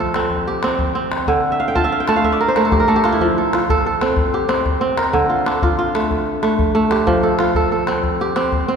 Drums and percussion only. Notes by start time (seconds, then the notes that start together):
0.07 calabash click
0.14 calabash click
0.30 calabash thump, calabash click
0.63 calabash click
0.79 calabash thump, calabash click
1.12 calabash click
1.27 calabash thump
1.36 calabash click
1.44 calabash click
1.52 calabash click
1.76 calabash thump
2.00 calabash click
2.08 calabash click
2.24 calabash thump, calabash click
2.41 calabash click
2.56 calabash click
2.64 calabash click
2.72 calabash thump, calabash click
3.04 calabash click
3.20 calabash thump
3.29 calabash click
3.37 calabash click
3.45 calabash click
3.53 calabash click
3.70 calabash thump
3.93 calabash click
4.01 calabash click
4.17 calabash thump, calabash click
4.33 calabash click
4.49 calabash click
4.57 calabash click
4.66 calabash thump, calabash click
4.98 calabash click
5.14 calabash thump
5.39 calabash click
5.46 calabash click
5.62 calabash thump
5.79 calabash click
5.95 calabash click
6.03 calabash click
6.11 calabash thump
6.19 calabash click
6.26 calabash click
6.43 calabash click
6.59 calabash thump
6.75 calabash click
6.83 calabash click
6.91 calabash click
7.07 calabash thump
7.15 calabash click
7.23 calabash click
7.31 calabash click
7.39 calabash click
7.55 calabash thump
7.79 calabash click
7.87 calabash click
8.03 calabash thump, calabash click
8.20 calabash click
8.36 calabash click
8.44 calabash click
8.52 calabash thump, calabash click